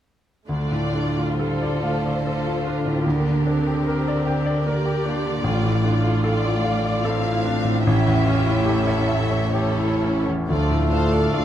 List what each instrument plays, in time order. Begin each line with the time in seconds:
0.48 grand piano D2, cello section D3, viola section A3 D4, violin section F4 D5
0.71 grand piano A2
0.94 grand piano D4, viola section F4
1.18 grand piano F4
1.39 viola section G3, grand piano A4, violin section A4 C5
1.62 grand piano D5
1.83 viola section A3, grand piano F5
2.06 grand piano D5
2.25 viola section A3 F4, violin section A4, grand piano A4
2.47 grand piano F4
2.65 grand piano D4, violin section F4
2.85 grand piano A2
3.05 grand piano D2, viola section A#3 D4, violin section G4 A#4
3.27 grand piano D3
3.46 viola section C4, grand piano D4
3.67 grand piano G4
3.87 viola section D4, grand piano A#4
4.08 grand piano D5
4.27 grand piano G5
4.46 grand piano D5
4.66 viola section A#3 G4, violin section A#4 D5, grand piano A#4
4.85 grand piano G4
5.05 grand piano D4, violin section F4
5.26 grand piano D3
5.44 grand piano A1, cello section A2, viola section A3 F4
5.63 grand piano A2
5.84 grand piano D4, viola section F4
6.04 grand piano F4
6.24 viola section A3, grand piano A4, violin section D5
6.44 grand piano D5
6.64 grand piano F5
6.85 grand piano D5
7.05 viola section C4 E4, grand piano A4, violin section F5
7.24 grand piano F4
7.45 viola section D4, grand piano D4
7.65 grand piano A2
7.84 grand piano A1, viola section C#4 E4, violin section G4 E5
8.07 grand piano E2
8.26 grand piano C#4, viola section F4
8.46 grand piano E4
8.65 viola section E4, grand piano G4, violin section A4
8.87 grand piano C#5
9.08 grand piano E5
9.31 grand piano C#5
9.52 viola section C#4 E4, grand piano G4, violin section A4 C#5
9.78 grand piano E4
10.02 grand piano C#4
10.27 grand piano E2
10.48 grand piano D2, cello section D2, double bass section D2, viola section F3 F4, french horn section A3 F4, bassoon A3, clarinet D4, violin section F4 D5, cor anglais A4
10.71 grand piano A2
10.90 viola section A3 D4, grand piano D4, violin section A4 C5 F5
11.13 grand piano F4, violin section D5
11.32 double bass section D2, cello section D2, viola section F3 F4, violin section F4 D5 F5, grand piano A4